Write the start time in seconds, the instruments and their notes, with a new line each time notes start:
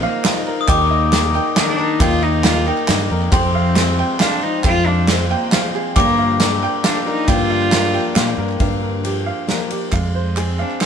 Already playing: twelve-string acoustic guitar D#3 A#3 D#4 F4, harmonium F3 A#3 D#4, upright piano A#4 D#5, glockenspiel A#5
0.03 cello A#3, upright piano F5, clap
0.22 twelve-string acoustic guitar D#3 A#3 D#4 F4, upright piano D#5, snare, clap, ride
0.47 upright piano A#4, clap
0.61 glockenspiel D#6
0.67 fingered electric bass D#2, twelve-string acoustic guitar D#3 A#3 D#4 G4, harmonium D#3 G4 A#4, cello A#3, upright piano G5, glockenspiel D6, kick, clap, ride
0.91 upright piano D#5
1.11 twelve-string acoustic guitar D#3 A#3 D#4 G4, upright piano A#4, snare, clap, ride
1.33 twelve-string acoustic guitar A#3 D#4 G4, upright piano G5, clap
1.55 twelve-string acoustic guitar D#3 A#3 D#4 G4, cello D4, upright piano D#5, snare, clap, ride
1.61 cello D#4
1.68 cello D4
1.79 cello D#4, upright piano A#4, clap
1.99 fingered electric bass D#2, twelve-string acoustic guitar D#3 A#3 D#4 G4, cello F4, upright piano G5, kick, clap, ride
2.23 cello D#4, upright piano D#5, clap
2.43 twelve-string acoustic guitar D#3 A#3 D#4 G4, cello F4, upright piano A#4, snare, clap, ride
2.56 clap
2.65 twelve-string acoustic guitar A#3 D#4 G4, cello D#4, upright piano G5, clap
2.77 clap
2.87 fingered electric bass G2, twelve-string acoustic guitar D#3 A#3 D#4 G4, upright piano D#5, snare, clap, ride
3.09 fingered electric bass F2, twelve-string acoustic guitar A#3 D#4 G4, upright piano A#4
3.22 clap
3.31 twelve-string acoustic guitar F2 C3 F3 G#3 C4 G4, fingered electric bass F2, harmonium F3 C4, cello C4, upright piano G5, glockenspiel C6, kick, clap, ride
3.55 upright piano F5
3.76 twelve-string acoustic guitar F3 G#3 C4 G4, snare, clap, ride
3.98 upright piano G5, clap
4.19 twelve-string acoustic guitar F3 G#3 C4 G4, cello D4, upright piano F5, snare, clap, ride
4.42 twelve-string acoustic guitar F3 G#3 C4 G4, cello D#4, clap
4.64 fingered electric bass F2, twelve-string acoustic guitar F2 C3 F3 G#3 C4 G4, cello F4, upright piano G5, kick, clap, ride
4.86 cello D4, upright piano F5
5.07 twelve-string acoustic guitar F3 G#3 C4 G4, cello C4, snare, clap, ride
5.30 cello A#3, upright piano G5, clap
5.52 twelve-string acoustic guitar F3 G#3 C4 G4, upright piano F5, snare, clap, ride
5.75 upright piano G#4, clap
5.95 twelve-string acoustic guitar G2 D3 F3 A#3 D4 G4, fingered electric bass G2, harmonium G3 D4 F4 A#4, cello A#3, upright piano G5, glockenspiel D6, kick, clap, ride
6.18 upright piano F5
6.39 twelve-string acoustic guitar F3 A#3 D4 G4, upright piano A#4, snare, clap, ride
6.63 upright piano G5, clap
6.84 twelve-string acoustic guitar F3 A#3 D4 G4, cello D4, upright piano F5, snare, clap, ride
7.06 cello D#4, upright piano A#4, clap
7.27 twelve-string acoustic guitar G2 D3 F3 A#3 D4 G4, fingered electric bass G2, cello F4, upright piano G5, kick, clap, ride
7.40 clap
7.50 upright piano F5, clap
7.62 clap
7.71 twelve-string acoustic guitar F3 A#3 D4 G4, upright piano A#4, snare, clap, ride
7.83 clap
7.93 twelve-string acoustic guitar F3 A#3 D4 G4, upright piano G5
8.15 fingered electric bass A#2, twelve-string acoustic guitar F3 A#3 D4 G4, upright piano F5, snare, clap, ride
8.38 fingered electric bass G2, upright piano A#4
8.49 clap
8.59 twelve-string acoustic guitar G2 D3 F3 A#3 D4 G4, fingered electric bass G2, upright piano F5, kick, ride
8.82 upright piano A#4
9.04 twelve-string acoustic guitar F3 A#3 D4 G4, upright piano G4, ride
9.26 upright piano F5
9.48 twelve-string acoustic guitar F3 A#3 D4 G4, upright piano A#4, snare, ride
9.70 twelve-string acoustic guitar F3 A#3 D4 G4, upright piano G4, ride
9.92 fingered electric bass F2, steel-string acoustic guitar F2 G#3, upright piano F5, kick, clap, ride
10.04 clap
10.15 cello G#3, upright piano C5
10.36 steel-string acoustic guitar F3 G#4, cello C4, upright piano G#4, clap, ride
10.59 steel-string acoustic guitar C4, cello D4, upright piano F5, clap
10.71 clap
10.81 steel-string acoustic guitar C3 G#4, upright piano C5, snare, clap, ride